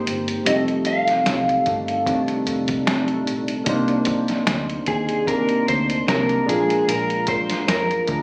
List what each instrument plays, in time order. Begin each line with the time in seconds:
Already playing: synth keys G#3 C4 A#4 G5, clean electric guitar A#3 D#4 G4 C5
0.06 picked electric bass G1, closed hi-hat
0.28 closed hi-hat
0.45 picked electric bass F1, clean electric guitar F2 C3 D#3 A3 D#5, synth keys G3 C4 D#4, closed hi-hat
0.50 synth keys G4
0.56 synth keys A4
0.68 closed hi-hat
0.85 clean electric guitar F5, closed hi-hat
1.08 snare, closed hi-hat
1.26 picked electric bass C2, snare, closed hi-hat
1.49 closed hi-hat
1.66 picked electric bass G1, clean electric guitar D#3 A3 D4, kick, closed hi-hat
1.88 closed hi-hat
2.06 clean electric guitar C3 D#3 A3 D4, kick, closed hi-hat
2.28 closed hi-hat
2.47 picked electric bass F1, closed hi-hat
2.68 kick, closed hi-hat
2.86 clean electric guitar C3 D#3 A3 D4, snare, closed hi-hat
3.08 closed hi-hat
3.27 picked electric bass A#1, closed hi-hat
3.48 closed hi-hat
3.64 picked electric bass C2, clean electric guitar C3, synth keys A#3 D4 D#4, kick, closed hi-hat
3.69 clean electric guitar A#3 D4, synth keys C5
3.88 closed hi-hat
4.05 kick, closed hi-hat
4.28 snare, closed hi-hat
4.47 picked electric bass D2, snare, closed hi-hat
4.70 closed hi-hat
4.86 picked electric bass D#2, clean electric guitar G#4, kick, closed hi-hat
5.09 closed hi-hat
5.26 clean electric guitar C3 A#3 D4 A#4, kick, closed hi-hat
5.49 closed hi-hat
5.68 picked electric bass D2, clean electric guitar C5, kick, closed hi-hat
5.90 closed hi-hat
6.06 picked electric bass C2, clean electric guitar C3 D#3 A#3 D4 A#4, snare, closed hi-hat
6.29 closed hi-hat
6.46 picked electric bass A#1, synth keys G#3 D4 F4, clean electric guitar G#3 D4 G#4, closed hi-hat
6.50 clean electric guitar A#2 F3, synth keys A#4
6.70 closed hi-hat
6.88 picked electric bass A#1, clean electric guitar A#4, closed hi-hat
7.10 closed hi-hat
7.27 clean electric guitar C5, kick, closed hi-hat
7.50 snare, closed hi-hat
7.68 picked electric bass F2, clean electric guitar A#4, snare, closed hi-hat
7.91 closed hi-hat
8.07 picked electric bass D2, clean electric guitar F3 G#3 D4, kick, closed hi-hat